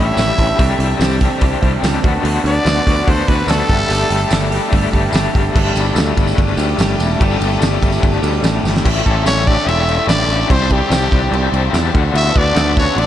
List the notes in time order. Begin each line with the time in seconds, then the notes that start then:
Already playing: A1 A2 E3 C#4 E4 G4 A4 G5 A5
0.00 A2 D3 G3 E5
0.17 A1 D3 E3 G3 C#4 E4 G4, snare, open hi-hat, tambourine
0.38 A1 G3 D4 E4, kick, open hi-hat
0.58 C2 C3 G3 C4 D4 G4 C5, kick, open hi-hat
0.79 C2 C4 D4 G4, open hi-hat
0.99 C2 G3 C4 D4 G4, snare, open hi-hat, tambourine
1.20 C3 G3 C4 D4 G4, kick, open hi-hat
1.41 C2 C3 G3 C4 D4 G4, kick, open hi-hat
1.62 C2 C3 G3 C4 D4 G4, kick, open hi-hat
1.82 C#2 G3 C4 D4 G4, snare, open hi-hat, tambourine
2.03 D2 D3 B3 D4 F#4 B4 F#5, kick, open hi-hat
2.23 D2 D3 B3 D4 F#4, open hi-hat
2.44 D2 B3 D4 F#4 D5, open hi-hat
2.65 D2 D3 B3 D4 F#4, snare, open hi-hat, tambourine
2.86 D2 D3 B3 D4 F#4, kick, open hi-hat
3.07 D2 D3 B3 D4 F#4 C5, kick, open hi-hat
3.28 D2 D3 B3 D4 F#4 B4, kick, open hi-hat
3.47 D2 D3 B3 D4 A4, snare, open hi-hat, tambourine
3.51 F#4
3.69 G1 G3 A3 D4 G4 A4 G5, kick, open hi-hat
3.89 G1 G3 A3 D4 G4, open hi-hat
4.09 G1 A3 D4 G4, open hi-hat
4.30 G1 G3 A3 D4 G4, snare, open hi-hat, tambourine
4.50 G3 A3 D4 G4, open hi-hat
4.72 G1 G3 A3 D4 G4, kick, open hi-hat
4.93 G1 G3 A3 D4 G4, kick, open hi-hat
5.13 G1 G3 A3 D4 G4, snare, open hi-hat, tambourine
5.33 G1 A3 D4 G4, kick, open hi-hat
5.53 G1 G3 A3 D4 G4 A4 G5 D6, kick, crash, tambourine
5.65 tambourine
5.75 G1, ride, tambourine
5.86 tambourine
5.95 D2, snare, ride, tambourine
6.06 tambourine
6.17 G1, kick, ride, tambourine
6.27 tambourine
6.38 G1, kick, ride, tambourine
6.48 tambourine
6.57 D2 G3 A3 D4 G4, ride, tambourine
6.78 G1 G3 A3 D4 G4, snare, ride, tambourine
6.89 tambourine
6.99 E1, ride, tambourine
7.11 tambourine
7.20 G1 G3 A3 D4 G4 A4, kick, ride, tambourine
7.30 tambourine
7.41 G1, ride
7.51 tambourine
7.61 G1, snare, ride, tambourine
7.72 tambourine
7.82 G1, kick, ride, tambourine
7.92 tambourine
8.03 G1, kick, ride
8.13 tambourine
8.22 D2 G3 A3 D4 G4, ride, tambourine
8.34 tambourine
8.43 A1 G3 A3 D4 G4, snare, ride, tambourine
8.63 G1, snare, tambourine
8.77 snare
8.84 A1 A2 E3 A3 C#4 G4 A4 G5 A5, kick, crash
9.05 A1 A2 E3 A3 C#4 G4 A4, kick, crash
9.24 A1 A2 E3 A3 C#4 G4 C#5, snare, tambourine, crash
9.46 A2 E3 A3 C#4 D4 G4 D5, kick, crash
9.66 E1 A2 E3 A3 C#4 E4 G4 E5, crash
9.87 A2 E3 A3 C#4 G4, crash
10.07 A1 A2 E3 A3 C#4 D4 G4 D5, snare, tambourine, crash
10.27 A1 A2 E3 A3 C#4, crash
10.31 G4
10.49 C2 C3 G3 C4 D4 G4 C5, kick, crash
10.70 C3 G3 C4 D4 G4, kick, crash
10.90 C2 C3 G3 C4 D4 G4, snare, tambourine, crash
11.11 C2 C3 G3 C4 D4 G4, kick, crash
11.31 C2 C3 G3 C4 D4 G4, crash
11.52 C2 C3 G3 C4 D4 G4, crash
11.72 E2 C3 G3 C4 D4 G4, snare, tambourine, crash
11.93 D2 D3 B3 D4 F#4 B4 F#5, kick, crash
12.14 D2 D3 B3 D4 E4 F#4 E5, crash
12.35 D2 D3 B3 D4 F#4 D5, kick, crash
12.55 D2 D3 B3 D4 F#4, snare, tambourine, crash
12.76 D3 B3 C#4 D4 F#4 C#5, kick, crash
12.96 A1 D3 B3 D4 F#4 D5, crash